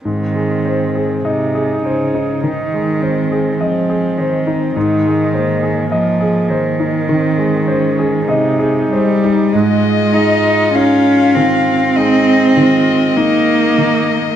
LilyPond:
<<
  \new Staff \with { instrumentName = "Violin" } { \time 4/4 \key aes \major \tempo 4 = 50 r1 | r1 | ees''4 f''4 ees''8 ees''4. | }
  \new Staff \with { instrumentName = "Grand piano" } { \time 4/4 \key aes \major aes,16 aes16 c''16 aes'16 ees''16 aes'16 c''16 ees'16 ees16 aes16 c''16 aes'16 ees''16 aes'16 c''16 ees'16 | aes,16 aes16 c''16 aes'16 ees''16 aes'16 c''16 ees'16 ees16 aes16 c''16 aes'16 ees''16 aes'16 c''16 ees'16 | aes,8 aes8 ees'8 ees8 aes8 ees8 ees'8 ees8 | }
  \new Staff \with { instrumentName = "Viola" } { \time 4/4 \key aes \major c'4 ees'4 ees'8 c'8 c'4 | ees'8 bes4. c'8 des'8 ees'4 | f'2 ees'8 f'8 ees'4 | }
  \new Staff \with { instrumentName = "Cello" } { \clef bass \time 4/4 \key aes \major ees4 c8 des8 ees4 f8 ees8 | ees4 f8 ees4. c8 g8 | aes8 ees'8 des'8 c'4. bes4 | }
>>